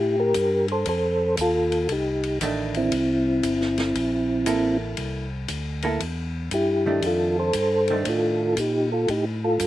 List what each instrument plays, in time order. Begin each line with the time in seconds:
Already playing: tonewheel organ A2 E4 G4
0.20 tonewheel organ G4 A#4
0.34 tonewheel organ G2, kick, hi-hat pedal, ride
0.68 tonewheel organ C5, ride
0.72 tonewheel organ A4
0.86 tonewheel organ F2 A4 C5, kick, ride
1.37 tonewheel organ D#2 A4, kick, hi-hat pedal, ride
1.41 tonewheel organ F4
1.72 ride
1.89 tonewheel organ C2 D#4 G4, kick, ride
2.23 ride
2.41 tonewheel organ A1, hollow-body jazz guitar D#3 A3 D4, kick, hi-hat pedal, ride
2.74 tonewheel organ C4 E4, ride
2.92 tonewheel organ C2, kick, ride
3.43 tonewheel organ G1, kick, hi-hat pedal, ride
3.61 snare
3.78 snare, ride
3.95 tonewheel organ A#1, kick, ride
4.46 tonewheel organ A1, hollow-body jazz guitar A#3 E4 A4, kick, hi-hat pedal, ride
4.97 tonewheel organ C2, kick, ride
5.48 tonewheel organ D2, kick, hi-hat pedal, ride
5.82 hollow-body jazz guitar A#3 E4 A4, ride
6.00 tonewheel organ E2, kick, ride
6.51 tonewheel organ G2 E4 G4, kick, hi-hat pedal, ride
6.86 hollow-body jazz guitar D#3 A3 D4
7.02 tonewheel organ F2, kick, ride
7.06 tonewheel organ F4 A4
7.39 tonewheel organ A4 C5
7.53 tonewheel organ G2, kick, hi-hat pedal, ride
7.88 hollow-body jazz guitar D#3 A3 D4, ride
8.05 tonewheel organ A2 F4 A4, kick, ride
8.56 tonewheel organ A#2 D#4 G4, kick, hi-hat pedal, ride
8.92 tonewheel organ F4 A4
9.08 tonewheel organ A2 D#4 G4, kick, ride
9.44 tonewheel organ F4 A4
9.60 tonewheel organ G2, kick, hi-hat pedal, ride